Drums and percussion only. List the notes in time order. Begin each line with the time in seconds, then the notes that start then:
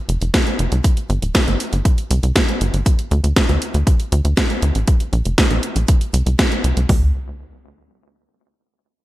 0.09 closed hi-hat
0.22 closed hi-hat
0.34 kick, snare, closed hi-hat
0.47 closed hi-hat
0.59 closed hi-hat
0.72 closed hi-hat
0.84 kick, closed hi-hat
0.97 closed hi-hat
1.10 closed hi-hat
1.22 closed hi-hat
1.35 kick, snare, closed hi-hat
1.48 closed hi-hat
1.60 closed hi-hat
1.73 closed hi-hat
1.85 kick, closed hi-hat
1.98 closed hi-hat
2.11 closed hi-hat
2.23 closed hi-hat
2.36 kick, snare, closed hi-hat
2.49 closed hi-hat
2.61 closed hi-hat
2.74 closed hi-hat
2.86 kick, closed hi-hat
2.99 closed hi-hat
3.11 closed hi-hat
3.24 closed hi-hat
3.36 kick, snare, closed hi-hat
3.49 closed hi-hat
3.62 closed hi-hat
3.74 closed hi-hat
3.87 kick, closed hi-hat
4.00 closed hi-hat
4.12 closed hi-hat
4.25 closed hi-hat
4.37 kick, snare, closed hi-hat
4.50 closed hi-hat
4.62 closed hi-hat
4.75 closed hi-hat
4.88 kick, closed hi-hat
5.00 closed hi-hat
5.13 closed hi-hat
5.25 closed hi-hat
5.38 kick, snare, closed hi-hat
5.51 closed hi-hat
5.63 closed hi-hat
5.76 closed hi-hat
5.88 kick, closed hi-hat
6.01 closed hi-hat
6.14 closed hi-hat
6.26 closed hi-hat
6.39 kick, snare, closed hi-hat
6.52 closed hi-hat
6.64 closed hi-hat
6.77 closed hi-hat
6.89 kick, floor tom, open hi-hat